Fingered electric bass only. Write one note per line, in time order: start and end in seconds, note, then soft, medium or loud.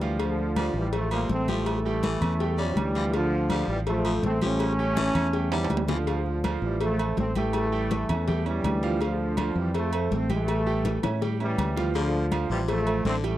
0.00 0.68 D2 medium
0.74 1.25 A1 loud
1.29 2.15 A1 medium
2.21 2.72 E2 loud
2.76 3.62 D2 loud
3.68 4.19 A1 loud
4.23 5.09 A1 loud
5.15 5.66 E2 loud
5.70 6.56 D2 medium
6.62 7.13 A1 loud
7.17 8.03 A1 medium
8.09 8.60 E2 loud
8.64 9.50 D2 loud
9.55 10.07 F2 loud
10.11 10.97 A1 loud
11.03 11.54 A2 loud
11.58 12.44 D2 medium
12.50 13.01 A1 loud
13.05 13.38 A1 medium